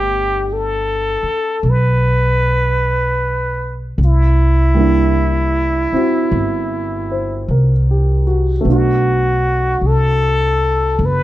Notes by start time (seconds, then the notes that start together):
Already playing: G1 A3 B3 D4 G4 F#5
0.53 A4
1.23 muted upright bass stroke
1.63 B1
1.70 B4
3.98 C2
4.05 E4
4.75 G3 A#3 D4
4.80 E4
5.92 C4 E4 F#4, muted upright bass stroke
6.32 G1
7.12 C5
7.48 C2 A#4
7.91 G4
8.27 F#4
8.61 A3 B3
8.65 B1 D4
8.70 F#4
9.81 C2
9.87 A4
10.99 F#1
11.05 B4